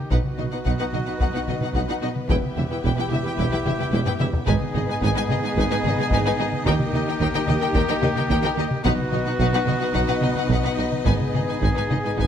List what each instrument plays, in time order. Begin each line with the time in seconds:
Already playing: string section G4 A#4
0.11 tuba B1, double bass section B1, cello section B2, french horn section B3 D#4, string section B3 F#4 B4 D#5, viola section D#4, trumpet F#4, violin section B4 F#5, taiko
0.24 taiko mid
0.37 tuba B1, double bass section B1, cello section B2, viola section D#4, violin section F#4 D#5, taiko mid
0.51 cello section B2, viola section D#4, violin section B4 F#5
0.65 double bass section B1, tuba B1, cello section B2, viola section D#4, violin section B4 F#5, taiko
0.79 cello section B2, viola section D#4, violin section B4 F#5
0.92 double bass section B1, tuba B1, cello section B2, viola section D#4, violin section F#4 D#5, taiko mid
1.06 cello section B2, viola section D#4, violin section B4 F#5
1.18 double bass section B1, tuba B1, cello section B2, viola section D#4, violin section B4 F#5, taiko
1.32 cello section B2, viola section D#4, violin section B4 F#5
1.47 double bass section B1, tuba B1, cello section B2, viola section D#4, violin section F#4 D#5, taiko mid
1.60 cello section B2, viola section D#4, violin section B4 F#5, taiko mid
1.74 double bass section B1, tuba B1, cello section B2, viola section D#4, violin section B4 F#5, taiko
1.88 cello section B2, viola section D#4, violin section B4 F#5
2.01 tuba B1, double bass section B1, cello section B2, viola section D#4, violin section F#4 D#5
2.16 taiko mid
2.29 tuba E1, double bass section E1, cello section E2, french horn section E4, viola section E4, trumpet G4, string section G4 E5, violin section B4 G5, taiko
2.43 taiko mid
2.55 double bass section E1, tuba E1, cello section E2, viola section E4, violin section G4 E5, taiko mid
2.70 cello section E2, viola section E4, violin section B4 G5
2.84 tuba E1, double bass section E1, cello section E2, viola section E4, violin section B4 G5, taiko
2.96 cello section E2, viola section E4, violin section B4 G5
3.09 double bass section E1, tuba E1, cello section E2, viola section E4, violin section G4 E5, taiko mid
3.23 cello section E2, viola section E4, violin section B4
3.27 violin section G5
3.37 tuba E1, double bass section E1, cello section E2, viola section E4, violin section B4 G5, taiko
3.51 cello section E2, viola section E4, violin section B4 G5
3.65 tuba E1, double bass section E1, cello section E2, viola section E4, violin section G4 E5, taiko mid
3.78 cello section E2, viola section E4, violin section B4 G5, taiko mid
3.92 double bass section E1, tuba E1, cello section E2, viola section E4, violin section B4 G5, taiko high
4.06 cello section E2, viola section E4, violin section B4 G5, taiko low-mid
4.19 double bass section E1, tuba E1, cello section E2, viola section E4, violin section G4 E5, taiko mid
4.33 taiko low
4.46 tuba G#1, double bass section G#1, cello section G#2, french horn section B3 D#4, viola section D#4, string section D#4 G#4 B4 D#5, trumpet G#4, violin section B4 G#5, taiko
4.61 taiko mid
4.74 tuba G#1, double bass section G#1, cello section G#2, viola section D#4, violin section G#4 D#5, taiko mid
4.88 cello section G#2, viola section D#4, violin section B4 G#5
5.01 double bass section G#1, tuba G#1, cello section G#2, viola section D#4, violin section B4 G#5, taiko
5.15 cello section G#2, viola section D#4, violin section B4 G#5
5.29 double bass section G#1, tuba G#1, cello section G#2, viola section D#4, violin section G#4 D#5, taiko mid
5.43 cello section G#2, viola section D#4, violin section B4 G#5
5.56 double bass section G#1, tuba G#1, cello section G#2, viola section D#4, violin section B4 G#5, taiko
5.71 cello section G#2, viola section D#4, violin section B4 G#5
5.84 double bass section G#1, tuba G#1, cello section G#2, viola section D#4, violin section G#4 D#5, taiko mid
5.98 cello section G#2, viola section D#4, violin section B4 G#5, taiko mid
6.11 double bass section G#1, tuba G#1, cello section G#2, viola section D#4, violin section B4 G#5, taiko
6.26 cello section G#2, viola section D#4, violin section B4 G#5
6.37 double bass section G#1, tuba G#1, cello section G#2, viola section D#4, violin section G#4 D#5
6.52 taiko mid
6.65 double bass section D#2, tuba D#2, cello section D#3, french horn section A#3, viola section D#4, string section G4 A#4, trumpet G4, violin section A#4 G5, taiko
6.79 taiko mid
6.92 double bass section D#2, tuba D#2, cello section D#3, viola section D#4, violin section G4 D#5, taiko mid
7.06 cello section D#3, viola section D#4, violin section A#4 G5
7.20 double bass section D#2, tuba D#2, cello section D#3, viola section D#4, violin section A#4 G5, taiko
7.34 cello section D#3, viola section D#4, violin section A#4 G5
7.47 double bass section D#2, tuba D#2, cello section D#3, viola section D#4, violin section G4 D#5, taiko mid
7.60 cello section D#3, viola section D#4, violin section A#4 G5
7.75 double bass section D#2, tuba D#2, cello section D#3, viola section D#4, violin section A#4 G5, taiko
7.88 cello section D#3, viola section D#4, violin section A#4 G5
8.01 tuba D#2, double bass section D#2, cello section D#3, viola section D#4, violin section G4 D#5, taiko mid
8.16 cello section D#3, viola section D#4, violin section A#4 G5, taiko mid
8.29 double bass section D#2, tuba D#2, cello section D#3, viola section D#4, violin section A#4 G5, taiko
8.43 cello section D#3, viola section D#4, violin section A#4 G5
8.57 tuba D#2, double bass section D#2, cello section D#3, viola section D#4, violin section G4 D#5
8.71 taiko mid
8.84 tuba B1, double bass section B1, cello section B2, french horn section B3 D#4, string section D#4 F#4 B4 D#5, viola section D#4, trumpet F#4, violin section B4 F#5, taiko
8.98 taiko mid
9.11 double bass section B1, tuba B1, cello section B2, viola section D#4, violin section F#4 D#5, taiko mid
9.26 cello section B2, viola section D#4, violin section B4 F#5
9.39 tuba B1, double bass section B1, cello section B2, viola section D#4, violin section B4 F#5, taiko
9.53 cello section B2, viola section D#4, violin section B4 F#5
9.66 tuba B1, double bass section B1, cello section B2, viola section D#4, violin section F#4 D#5, taiko mid
9.80 cello section B2, viola section D#4, violin section B4 F#5
9.94 tuba B1, double bass section B1, cello section B2, viola section D#4, violin section B4 F#5, taiko
10.07 cello section B2, viola section D#4, violin section B4 F#5
10.21 tuba B1, double bass section B1, cello section B2, viola section D#4, violin section F#4 D#5, taiko mid
10.35 cello section B2, viola section D#4, violin section B4 F#5, taiko mid
10.48 tuba B1, double bass section B1, cello section B2, viola section D#4, violin section B4 F#5, taiko
10.63 cello section B2, viola section D#4, violin section B4 F#5
10.77 tuba B1, double bass section B1, cello section B2, viola section D#4, violin section F#4 D#5
10.92 taiko mid
11.05 double bass section G#1, tuba G#1, cello section G#2, viola section D#4, trumpet G#4, string section G#4, violin section B4 G#5, taiko
11.20 taiko mid
11.33 double bass section G#1, tuba G#1, cello section G#2, viola section D#4, violin section G#4 D#5, taiko mid
11.46 cello section G#2, viola section D#4, violin section B4 G#5
11.60 double bass section G#1, tuba G#1, cello section G#2, viola section D#4, violin section B4 G#5, taiko
11.75 cello section G#2, viola section D#4, violin section B4 G#5
11.89 double bass section G#1, tuba G#1, cello section G#2, viola section D#4, violin section G#4 D#5, taiko mid
12.03 cello section G#2, viola section D#4, violin section B4 G#5
12.16 double bass section G#1, tuba G#1, cello section G#2, viola section D#4, violin section B4 G#5, taiko